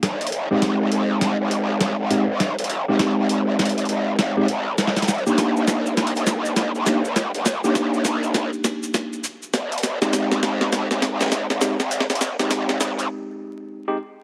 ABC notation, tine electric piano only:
X:1
M:4/4
L:1/16
Q:"Swing 16ths" 1/4=101
K:Fdor
V:1 name="Tine electric piano"
z3 [A,CEG]8- [A,CEG]3 [A,CEG] z | z3 [A,CEG]8- [A,CEG]2 [A,CEG] z2 | z3 [B,DEG]8- [B,DEG]3 [B,DEG] z | z3 [B,DEG]8- [B,DEG]3 z2 |
z3 [A,CEG]8- [A,CEG]3 [A,CEG] z | z3 [A,CEG]8- [A,CEG]2 [A,CEG] z2 |]